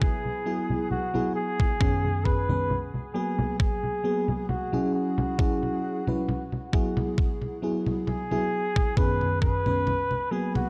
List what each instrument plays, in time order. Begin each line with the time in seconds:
Already playing: fm electric piano F#3 B3 E4 G#4
0.01 flugelhorn G#4, kick, high conga
0.25 high conga
0.45 fm electric piano F#3 B3 E4 G#4
0.70 high conga
0.91 flugelhorn F#4, high conga
1.14 fm electric piano F#3 B3 E4 G#4, high conga
1.35 flugelhorn G#4
1.60 kick, high conga
1.80 fm electric piano F#2 D#3 B3 C#4 G#4, kick, high conga
2.04 high conga
2.25 flugelhorn B4, kick
2.48 fm electric piano F#2 D#3 B3 C#4 B4, high conga
2.70 high conga
2.94 high conga
3.14 fm electric piano F#3 A#3 B3 G#4, flugelhorn G#4
3.39 high conga
3.59 flugelhorn G#4, kick, high conga
3.83 high conga
4.04 fm electric piano F#3 A#3 B3 G#4
4.28 high conga
4.49 flugelhorn F#4, high conga
4.72 fm electric piano F#3 C#4 E4 G#4, high conga
4.94 flugelhorn F#4
5.18 high conga
5.38 fm electric piano F#3 C#4 E4 G#4, kick, high conga
5.63 high conga
6.07 fm electric piano F#3 C#4 E4 B4, high conga
6.29 high conga
6.52 high conga
6.72 fm electric piano F#3 B3 E4 G#4, kick
6.97 high conga
7.18 kick, high conga
7.42 high conga
7.62 fm electric piano F#3 B3 E4 G#4
7.86 high conga
8.07 flugelhorn G#4, high conga
8.31 fm electric piano F#3 B3 E4 G#4, high conga
8.76 kick, high conga
8.97 fm electric piano F#2 D#3 B3 C#4 G#4, flugelhorn B4, kick, high conga
9.21 high conga
9.41 flugelhorn B4, kick
9.65 fm electric piano F#2 D#3 B3 C#4 B4, high conga
9.87 high conga
10.11 high conga
10.31 fm electric piano F#3 A#3 B3 G#4, flugelhorn G#4
10.55 flugelhorn F#4, high conga